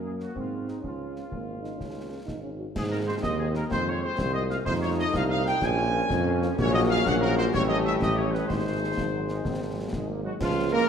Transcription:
Already playing: F#2 A#3
0.04 F#3 A#3 C#4 G#4
0.20 F#3 A#3 C#4 F#4, snare
0.35 G#2 C4 F4, concert bass drum
0.53 F#3 G#3 C4
0.68 F#3 G#3 C4 D#4, snare
0.81 C#2 C#4 F4, concert bass drum
1.00 F3 G#3 C#4
1.16 F3 G#3 C#4, snare
1.29 G#1 A#3, concert bass drum
1.48 F3 G#3 C#4
1.62 F3 G#3 C#4 D#4, snare
1.78 C#2 C#4, concert bass drum, snare
1.96 F3 G#3 C#4
2.10 F3 G#3 C#4
2.25 G#1 D#4, concert bass drum, snare
2.43 F3 G#3 C#4
2.58 F3 G#3 C#4 F#4
2.75 G#2 D#3 C4 G#4, concert bass drum, snare, crash
2.90 G#3 C4 D#4 A#4
3.07 G#3 C4 D#4 C5
3.21 D#2 D#5, concert bass drum, snare
3.38 G#3 C4 D#4 G#4
3.54 G#3 C4 D#4 A#4, snare
3.70 F2 G#3 C5, concert bass drum, snare
3.87 G#3 C4 F4 C#5
4.03 G#3 C4 F4 C5
4.18 C2, concert bass drum, snare
4.33 G#3 C4 F4 D#5
4.49 G#3 C4 F4 F5, snare
4.65 F2 A3 D#4 C5, concert bass drum, snare, crash
4.81 A3 D#4 F4 C#5
4.98 A3 D#4 F4 D#5
5.13 C2 F5, concert bass drum, snare
5.29 A3 D#4 F4 F5
5.44 A3 D#4 F4 G5, snare
5.62 A#1 F3 C#4 G#5, concert bass drum, snare
5.76 A#3 C#4 F4
5.92 A#3 C#4 F4
6.09 F2, concert bass drum, snare
6.24 A#3 C#4 F4
6.41 A#3 C#4 F4, snare
6.57 A#1 F#3 A#3 C#4 F#4 C#5, concert bass drum, snare, crash
6.72 D#5
6.88 F5
7.05 A#1 A#3 C#4 F#4 F#5, concert bass drum, snare
7.21 A#4
7.37 C5, snare
7.53 A1 G3 A3 C#4 G4 C#5, concert bass drum, snare
7.68 D#5
7.85 E5
8.00 A1 D#5, concert bass drum, snare
8.16 C#5
8.32 B4, snare
8.46 G#1 D#3 G#3 D#4 C5, concert bass drum, snare, crash
8.97 G#1 F3, concert bass drum, snare
9.14 F#3
9.29 G#3, snare
9.44 G#1 C4, concert bass drum, snare
9.62 F3
9.78 F#3
9.92 G#1 G#3, concert bass drum, snare
10.09 A#3
10.24 F#3 G#3 F#4
10.40 C#2 F3 F4, concert bass drum, snare, crash
10.57 G#3 C#4 F4
10.72 G#3 A#3 C#4 F4 A#4

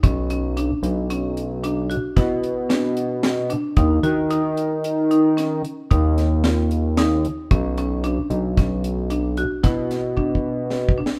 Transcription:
0.03 B1 C#4, kick, closed hi-hat
0.30 C#4, closed hi-hat
0.57 D4, closed hi-hat
0.83 B1, closed hi-hat
1.10 C#4, closed hi-hat
1.37 closed hi-hat
1.64 D4, closed hi-hat
1.90 F#4, closed hi-hat
2.16 B2 E4, kick, snare, closed hi-hat
2.44 closed hi-hat
2.70 D4, snare, closed hi-hat
2.97 closed hi-hat
3.23 snare, closed hi-hat
3.50 D4, closed hi-hat
3.77 D#2 D#4, kick, closed hi-hat
4.03 D#3 F#4, closed hi-hat
4.30 D#4, closed hi-hat
4.57 closed hi-hat
4.84 closed hi-hat
5.11 D#4, closed hi-hat
5.37 C#4, snare, closed hi-hat
5.65 closed hi-hat
5.91 D#2 D#4, kick, closed hi-hat
6.18 snare, closed hi-hat
6.44 F4, snare, closed hi-hat
6.71 closed hi-hat
6.97 D#4, snare, closed hi-hat
7.25 closed hi-hat
7.51 B1 C#4, kick, closed hi-hat
7.78 C#4, closed hi-hat
8.04 D4, closed hi-hat
8.30 B1, closed hi-hat
8.57 C#4, kick, snare, closed hi-hat
8.84 closed hi-hat
9.10 D4, closed hi-hat
9.37 F#4, closed hi-hat
9.63 B2 E4, kick, snare, closed hi-hat
9.91 snare, closed hi-hat
10.17 D4, kick
10.35 kick
10.70 snare
10.89 kick
10.98 D4
11.06 snare

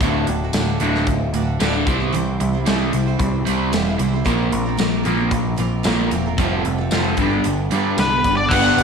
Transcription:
0.01 D1 D2 A2 D3 D4 F#4 A4, kick, closed hi-hat
0.27 D1 D2 A2, closed hi-hat
0.44 D4 F#4 A4
0.53 D1 D2 A2 D3 D4 F#4 A4, snare, closed hi-hat, tambourine
0.80 D1 D2 A2 D3 D4, closed hi-hat
0.84 F#4 A4
0.95 D4 F#4 A4, snare
1.07 D1 D2 A2, kick, closed hi-hat
1.33 D1 D2 A2 D3 D4 F#4, closed hi-hat
1.37 A4
1.59 D1 D2 A2 D3 D4 F#4 A4, snare, closed hi-hat, tambourine
1.74 D4 F#4 A4
1.86 C2 C3 G3 C4 E4 C5, kick, closed hi-hat
2.00 G3 C4 E4 C5
2.12 C2 C3 E3 G3 C4 E4 C5, closed hi-hat
2.40 C2 C3 G3, closed hi-hat
2.53 G3 C4 E4 C5
2.65 C2 C3 E3 G3 C4 E4, snare, closed hi-hat, tambourine
2.70 C5
2.92 C2 C3 G3 C4 E4, closed hi-hat
2.96 C5
3.07 G3 C4 E4 C5
3.19 C2 C3 G3, kick, closed hi-hat
3.45 C2 C3 G3 C4 E4 C5, closed hi-hat
3.72 E1 C3 E3 G3 C4 E4 C5, snare, closed hi-hat, tambourine
3.85 G3 C4 E4 C5
3.99 C2 C3 G3 C4 E4 C5, closed hi-hat
4.13 G3 C4 E4 C5
4.25 A#1 A#2 F3 A#3 C4 F4 A#4, kick, closed hi-hat
4.52 A#1 A#2 F3, closed hi-hat
4.66 C4 F4 A#4
4.77 A#1 A#2 F3 A#3 C4 F4 A#4, snare, closed hi-hat, tambourine
5.04 A#1 A#2 F3 A#3 C4 F4 A#4, closed hi-hat
5.18 C4 F4 A#4
5.31 A#1 A#2 F3, kick, closed hi-hat
5.56 A#1 A#2 F3 A#3 C4 F4 A#4, closed hi-hat
5.83 A#1 A#2 F3 A#3 C4 F4 A#4, snare, closed hi-hat, tambourine
5.98 C4 F4 A#4
6.11 E1 A#2 F3 A#3 C4 F4 A#4, closed hi-hat
6.26 C4 F4 A#4
6.37 F1 F2 C3 F3 G3 C4 F4 A4, kick, closed hi-hat
6.65 F1 F2 C3, closed hi-hat
6.78 C4 F4 A4
6.91 F1 F2 C3 F3 G3 C4 F4 A4, snare, closed hi-hat, tambourine
7.17 G1 G2 D3 G3 B3 D4 A4, kick, closed hi-hat
7.30 B3 D4 A4
7.44 G1 G2 D3, closed hi-hat
7.71 G2 D3 G3 B3 D4 A4, closed hi-hat
7.97 C2 G2 D3 G3 B3 D4 A4 B4, snare, closed hi-hat, tambourine
8.11 B3 D4 A4
8.24 G1 G2 D3 G3 B3 D4 A4, kick, closed hi-hat
8.37 B3 A4 D5
8.41 D4
8.49 G1 G2 D3 G3 B3 G4 D5 F#5, kick, crash
8.53 G3 B3 D4 G4
8.77 G1, closed hi-hat

